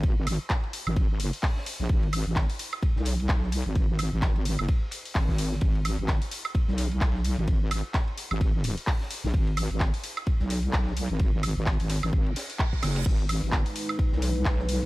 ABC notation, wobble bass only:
X:1
M:4/4
L:1/16
Q:"Swing 16ths" 1/4=129
K:G#m
V:1 name="Wobble bass" clef=bass
G,,,3 z4 G,,,4 z4 A,,, | G,,,3 G,,,2 z4 B,,,3 B,,,3 G,,,- | G,,,3 G,,,4 F,,, z4 G,,,4 | G,,,3 G,,,2 z4 B,,,3 B,,,3 G,,,- |
G,,,3 z4 G,,,4 z4 A,,, | G,,,3 G,,,2 z4 B,,,3 B,,,3 G,,,- | G,,,3 G,,,2 G,,,2 G,,, G,,,2 z4 F,,,2 | G,,,3 G,,,2 z4 B,,,3 B,,,3 G,,, |]